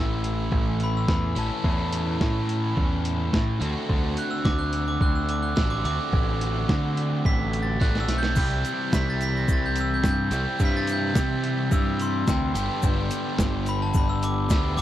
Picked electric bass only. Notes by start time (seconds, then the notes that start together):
Already playing: A1
0.52 A1
1.08 E2
1.36 A1
1.64 E2
2.21 A2
2.77 E2
3.33 A2
3.61 D2
3.89 D2
4.45 D2
5.00 D2
5.57 A1
5.85 D2
6.12 A1
6.69 D3
7.25 A1
7.81 A1
8.08 B1
8.36 C2
8.93 C2
9.48 C2
10.03 G2
10.31 C2
10.60 G2
11.15 C3
11.71 G2
12.27 D2
12.54 G1
12.83 G1
13.39 G1
13.95 G1
14.50 D2
14.78 G1